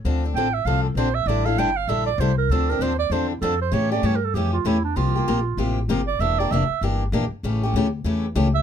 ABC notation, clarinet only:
X:1
M:4/4
L:1/8
Q:"Swing" 1/4=195
K:Dm
V:1 name="Clarinet"
z2 g e f A c e | d f g f e d c B | A B c d c E A c | ^c d (3c B A G F E D |
F6 z d | e d e2 z4 | z6 z e |]